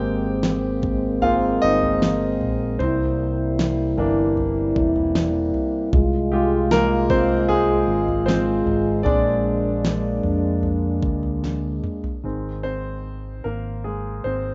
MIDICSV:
0, 0, Header, 1, 5, 480
1, 0, Start_track
1, 0, Tempo, 785340
1, 1714, Time_signature, 4, 2, 24, 8
1, 6500, Tempo, 804290
1, 8833, End_track
2, 0, Start_track
2, 0, Title_t, "Grand piano"
2, 0, Program_c, 0, 0
2, 0, Control_c, 0, 64, 127
2, 0, Note_on_c, 0, 56, 46
2, 0, Note_on_c, 0, 58, 45
2, 0, Note_on_c, 0, 60, 54
2, 0, Note_on_c, 0, 67, 80
2, 0, Note_on_c, 0, 79, 100
2, 476, Note_off_c, 0, 56, 0
2, 478, Note_off_c, 0, 58, 0
2, 480, Note_off_c, 0, 60, 0
2, 723, Note_off_c, 0, 67, 0
2, 743, Note_on_c, 0, 56, 47
2, 745, Note_on_c, 0, 58, 45
2, 746, Note_on_c, 0, 77, 87
2, 747, Note_on_c, 0, 60, 47
2, 749, Note_on_c, 0, 65, 70
2, 777, Note_off_c, 0, 79, 0
2, 963, Note_off_c, 0, 56, 0
2, 965, Note_off_c, 0, 58, 0
2, 966, Note_off_c, 0, 60, 0
2, 974, Note_off_c, 0, 65, 0
2, 988, Note_on_c, 0, 75, 110
2, 997, Note_off_c, 0, 77, 0
2, 999, Note_on_c, 0, 63, 65
2, 1694, Note_off_c, 0, 63, 0
2, 1706, Note_on_c, 0, 72, 74
2, 1716, Note_on_c, 0, 60, 59
2, 1722, Control_c, 0, 64, 0
2, 1735, Note_off_c, 0, 75, 0
2, 1825, Control_c, 0, 64, 127
2, 2429, Note_on_c, 0, 52, 54
2, 2434, Note_on_c, 0, 58, 55
2, 2439, Note_on_c, 0, 62, 67
2, 2749, Note_off_c, 0, 52, 0
2, 2752, Note_off_c, 0, 58, 0
2, 2755, Note_off_c, 0, 62, 0
2, 3121, Note_off_c, 0, 72, 0
2, 3126, Note_off_c, 0, 60, 0
2, 3633, Control_c, 0, 64, 0
2, 3731, Control_c, 0, 64, 127
2, 3860, Note_on_c, 0, 67, 60
2, 3865, Note_on_c, 0, 56, 55
2, 3870, Note_on_c, 0, 65, 66
2, 4103, Note_on_c, 0, 70, 106
2, 4105, Note_on_c, 0, 58, 79
2, 4323, Note_off_c, 0, 58, 0
2, 4340, Note_on_c, 0, 72, 95
2, 4342, Note_on_c, 0, 60, 74
2, 4346, Note_off_c, 0, 70, 0
2, 4562, Note_off_c, 0, 60, 0
2, 4573, Note_off_c, 0, 56, 0
2, 4575, Note_on_c, 0, 68, 91
2, 4582, Note_on_c, 0, 56, 68
2, 4585, Note_off_c, 0, 72, 0
2, 5032, Note_off_c, 0, 68, 0
2, 5035, Note_off_c, 0, 56, 0
2, 5047, Note_on_c, 0, 72, 82
2, 5055, Note_on_c, 0, 60, 76
2, 5510, Note_off_c, 0, 67, 0
2, 5511, Note_off_c, 0, 60, 0
2, 5515, Note_off_c, 0, 65, 0
2, 5520, Note_on_c, 0, 74, 91
2, 5527, Note_on_c, 0, 56, 58
2, 5530, Note_on_c, 0, 60, 45
2, 5533, Note_on_c, 0, 62, 73
2, 5543, Control_c, 0, 64, 0
2, 5546, Note_off_c, 0, 72, 0
2, 5651, Control_c, 0, 64, 127
2, 6228, Note_off_c, 0, 56, 0
2, 6229, Note_off_c, 0, 60, 0
2, 6946, Note_off_c, 0, 74, 0
2, 6952, Note_off_c, 0, 62, 0
2, 7455, Note_on_c, 0, 51, 37
2, 7458, Note_on_c, 0, 56, 30
2, 7464, Note_on_c, 0, 60, 43
2, 7467, Control_c, 0, 64, 0
2, 7590, Control_c, 0, 64, 127
2, 7686, Note_off_c, 0, 60, 0
2, 7693, Note_on_c, 0, 72, 80
2, 7695, Note_on_c, 0, 60, 52
2, 8153, Note_off_c, 0, 72, 0
2, 8154, Note_off_c, 0, 51, 0
2, 8154, Note_off_c, 0, 60, 0
2, 8156, Note_off_c, 0, 56, 0
2, 8175, Note_on_c, 0, 70, 66
2, 8185, Note_on_c, 0, 58, 49
2, 8406, Note_off_c, 0, 58, 0
2, 8415, Note_on_c, 0, 68, 60
2, 8424, Note_on_c, 0, 56, 48
2, 8425, Note_off_c, 0, 70, 0
2, 8640, Note_off_c, 0, 68, 0
2, 8645, Note_off_c, 0, 56, 0
2, 8652, Note_on_c, 0, 72, 73
2, 8664, Note_on_c, 0, 60, 52
2, 8833, Note_off_c, 0, 60, 0
2, 8833, Note_off_c, 0, 72, 0
2, 8833, End_track
3, 0, Start_track
3, 0, Title_t, "French horn section"
3, 0, Program_c, 1, 60
3, 0, Note_on_c, 1, 56, 65
3, 0, Note_on_c, 1, 58, 60
3, 0, Note_on_c, 1, 60, 75
3, 1697, Note_off_c, 1, 56, 0
3, 1697, Note_off_c, 1, 60, 0
3, 1698, Note_off_c, 1, 58, 0
3, 1713, Note_on_c, 1, 58, 70
3, 1714, Note_on_c, 1, 64, 81
3, 1716, Note_on_c, 1, 48, 68
3, 1717, Note_on_c, 1, 55, 67
3, 3605, Note_off_c, 1, 58, 0
3, 3605, Note_off_c, 1, 64, 0
3, 3606, Note_off_c, 1, 48, 0
3, 3607, Note_off_c, 1, 55, 0
3, 3617, Note_on_c, 1, 65, 73
3, 3618, Note_on_c, 1, 56, 71
3, 5513, Note_off_c, 1, 56, 0
3, 5513, Note_off_c, 1, 65, 0
3, 5535, Note_on_c, 1, 62, 81
3, 5537, Note_on_c, 1, 56, 75
3, 5542, Note_on_c, 1, 58, 63
3, 7441, Note_off_c, 1, 62, 0
3, 7442, Note_off_c, 1, 56, 0
3, 7444, Note_off_c, 1, 58, 0
3, 8833, End_track
4, 0, Start_track
4, 0, Title_t, "Fingered electric bass"
4, 0, Program_c, 2, 33
4, 0, Note_on_c, 2, 32, 93
4, 966, Note_off_c, 2, 32, 0
4, 995, Note_on_c, 2, 31, 78
4, 1452, Note_off_c, 2, 31, 0
4, 1478, Note_on_c, 2, 34, 73
4, 1700, Note_off_c, 2, 34, 0
4, 1719, Note_on_c, 2, 36, 96
4, 2410, Note_off_c, 2, 36, 0
4, 2430, Note_on_c, 2, 31, 93
4, 2886, Note_off_c, 2, 31, 0
4, 2911, Note_on_c, 2, 28, 85
4, 3363, Note_off_c, 2, 28, 0
4, 3625, Note_on_c, 2, 36, 102
4, 4792, Note_off_c, 2, 36, 0
4, 4813, Note_on_c, 2, 32, 88
4, 5270, Note_off_c, 2, 32, 0
4, 5291, Note_on_c, 2, 32, 85
4, 5516, Note_off_c, 2, 32, 0
4, 5529, Note_on_c, 2, 34, 102
4, 6228, Note_off_c, 2, 34, 0
4, 6253, Note_on_c, 2, 41, 86
4, 6732, Note_off_c, 2, 41, 0
4, 6732, Note_on_c, 2, 38, 74
4, 7193, Note_off_c, 2, 38, 0
4, 7457, Note_on_c, 2, 32, 64
4, 8155, Note_off_c, 2, 32, 0
4, 8178, Note_on_c, 2, 32, 62
4, 8634, Note_off_c, 2, 32, 0
4, 8654, Note_on_c, 2, 32, 56
4, 8833, Note_off_c, 2, 32, 0
4, 8833, End_track
5, 0, Start_track
5, 0, Title_t, "Drums"
5, 264, Note_on_c, 9, 38, 110
5, 325, Note_off_c, 9, 38, 0
5, 502, Note_on_c, 9, 43, 66
5, 508, Note_on_c, 9, 36, 86
5, 563, Note_off_c, 9, 43, 0
5, 569, Note_off_c, 9, 36, 0
5, 744, Note_on_c, 9, 43, 68
5, 805, Note_off_c, 9, 43, 0
5, 1110, Note_on_c, 9, 43, 55
5, 1172, Note_off_c, 9, 43, 0
5, 1236, Note_on_c, 9, 38, 115
5, 1297, Note_off_c, 9, 38, 0
5, 1473, Note_on_c, 9, 43, 65
5, 1534, Note_off_c, 9, 43, 0
5, 1713, Note_on_c, 9, 43, 122
5, 1774, Note_off_c, 9, 43, 0
5, 2196, Note_on_c, 9, 38, 112
5, 2257, Note_off_c, 9, 38, 0
5, 2431, Note_on_c, 9, 43, 63
5, 2492, Note_off_c, 9, 43, 0
5, 2672, Note_on_c, 9, 43, 72
5, 2733, Note_off_c, 9, 43, 0
5, 2911, Note_on_c, 9, 36, 88
5, 2972, Note_off_c, 9, 36, 0
5, 3030, Note_on_c, 9, 43, 62
5, 3091, Note_off_c, 9, 43, 0
5, 3150, Note_on_c, 9, 38, 111
5, 3211, Note_off_c, 9, 38, 0
5, 3387, Note_on_c, 9, 43, 65
5, 3448, Note_off_c, 9, 43, 0
5, 3624, Note_on_c, 9, 43, 109
5, 3625, Note_on_c, 9, 36, 113
5, 3685, Note_off_c, 9, 43, 0
5, 3686, Note_off_c, 9, 36, 0
5, 4102, Note_on_c, 9, 38, 114
5, 4164, Note_off_c, 9, 38, 0
5, 4337, Note_on_c, 9, 43, 60
5, 4339, Note_on_c, 9, 36, 87
5, 4399, Note_off_c, 9, 43, 0
5, 4400, Note_off_c, 9, 36, 0
5, 4579, Note_on_c, 9, 43, 64
5, 4640, Note_off_c, 9, 43, 0
5, 4940, Note_on_c, 9, 43, 56
5, 5001, Note_off_c, 9, 43, 0
5, 5064, Note_on_c, 9, 38, 108
5, 5125, Note_off_c, 9, 38, 0
5, 5299, Note_on_c, 9, 43, 70
5, 5360, Note_off_c, 9, 43, 0
5, 5537, Note_on_c, 9, 43, 124
5, 5599, Note_off_c, 9, 43, 0
5, 6018, Note_on_c, 9, 38, 108
5, 6079, Note_off_c, 9, 38, 0
5, 6255, Note_on_c, 9, 43, 67
5, 6316, Note_off_c, 9, 43, 0
5, 6497, Note_on_c, 9, 43, 70
5, 6556, Note_off_c, 9, 43, 0
5, 6733, Note_on_c, 9, 36, 81
5, 6793, Note_off_c, 9, 36, 0
5, 6855, Note_on_c, 9, 43, 51
5, 6915, Note_off_c, 9, 43, 0
5, 6979, Note_on_c, 9, 38, 59
5, 7039, Note_off_c, 9, 38, 0
5, 7217, Note_on_c, 9, 45, 86
5, 7277, Note_off_c, 9, 45, 0
5, 7338, Note_on_c, 9, 43, 81
5, 7397, Note_off_c, 9, 43, 0
5, 8833, End_track
0, 0, End_of_file